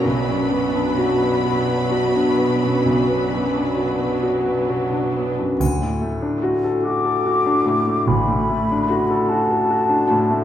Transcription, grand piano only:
\new Staff \with { instrumentName = "Grand piano" } { \time 12/8 \key b \minor \tempo 4. = 48 b,,16 fis,16 b16 d'16 fis'16 b'16 fis'16 b'16 fis'16 d'16 b16 fis,16 b,,16 b16 fis,16 d'16 fis'16 b'16 fis'16 b'16 fis'16 d'16 b16 fis,16 | \key d \major d,16 a,16 a16 d'16 fis'16 a'16 fis'16 a'16 fis'16 d'16 a,16 a16 d,16 a,16 a16 d'16 fis'16 a'16 fis'16 a'16 fis'16 d'16 a,16 a16 | }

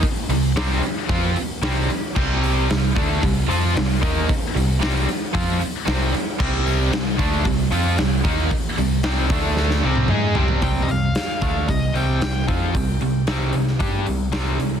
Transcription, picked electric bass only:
\new Staff \with { instrumentName = "Picked electric bass" } { \clef bass \time 4/4 \key c \minor \tempo 4 = 114 r8 c,8 c,8 r8 f,8 r8 c,8 r8 | c,4 c,8 d,8 c,8 f,8 c,8 ees,8 | r8 c,8 c,8 r8 f,8 r8 c,8 r8 | c,4 c,8 d,8 c,8 f,8 c,8 ees,8 |
r8 c,8 c,8 d,4 c,8 aes,8 c,8 | c,8 c,8 r8 d,8 c,8 c,8 c,8 f,8 | c,8 c,8 c,8 c,8 g,8 c,8 c,8 c,8 | }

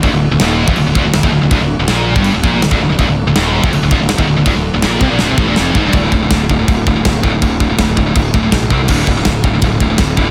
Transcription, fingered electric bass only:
\new Staff \with { instrumentName = "Fingered electric bass" } { \clef bass \time 4/4 \key c \mixolydian \tempo 4 = 163 d,,16 d,,8 d,,16 ees,,8. f,,16 d,,16 d,,16 d,,16 d,,16 d,,16 ees,,16 d,,16 d,,16 | d,,16 d,,8 d,,16 bes,,8. g,,8 d,,16 bes,,8 d,,16 d,,16 d,,16 d,,16 | d,,16 d,,8 d,,16 ees,,8. f,,16 d,,16 d,,16 d,,16 d,,16 d,,16 ees,,16 d,,16 d,,16 | d,,16 d,,8 d,,16 bes,,8 c,16 bes,,16 d,,16 c,16 a,,16 d,,16 f,,8 gis,,16 g,,16 |
d,,8 d,,8 d,,8 d,,8 d,,8 d,,8 d,,8 d,,8 | d,,4 d,,8 d,,8 d,,8 d,,8 b,,8 c,8 | d,,8 d,,8 d,,8 d,,8 d,,8 d,,8 d,,8 d,,8 | }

